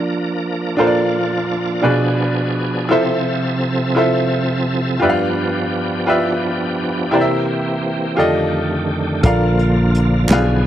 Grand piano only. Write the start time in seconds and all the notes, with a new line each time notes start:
Already playing: F3 A#3 D4
0.77 A#2 D4 F4 A4 A#4 C5
0.87 D5
1.82 B2 D4 F4 G#4 B4 D5
2.89 C3 E4 F4 A4 C5 E5
3.95 E4 F4 A4 C5 E5
5.00 G2 F4 G4 B4 D5 E5
5.09 F5
6.06 F4 G4 B4 D5 E5
7.11 C3 E4 G4 A#4 C5 D5
7.21 E5
8.17 F4 G4 A4 D5 D#5
9.23 A#2 F4 A4 A#4 D5 F5
10.30 B2 F4 G#4 B4 D5 F5